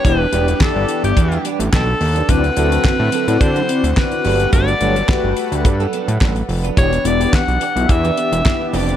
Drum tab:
HH |x-xx--xxxxxx--ox|xxxx--xxxxxx-xox|xxxx--xxxxxx-xox|xxxx-xxxxxxx--ox|
CP |----x-------x---|----x-------x---|----x-------x---|----x-------x---|
SD |----o-------o---|----o-------o---|----o-------o---|----o-------o---|
BD |o---o---o---o---|o---o---o---o---|o---o---o---o---|o---o---o---o---|